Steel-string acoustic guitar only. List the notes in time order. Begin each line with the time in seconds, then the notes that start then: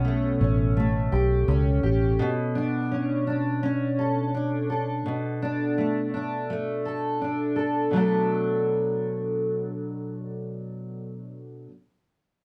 Already playing: B2 C#4
0.05 A3
0.41 C#4
0.77 A3
1.12 G4
1.48 C#4
1.83 G4
2.19 B2
2.55 D4
2.91 C#4
3.27 D4
3.63 C#4
3.99 A4
4.34 D4
4.70 A4
5.06 B2
5.42 D4
5.78 A3
6.14 D4
6.50 A3
6.85 A4
7.21 D4
7.56 A4
7.91 B2 F#3 A3
7.96 D4 A4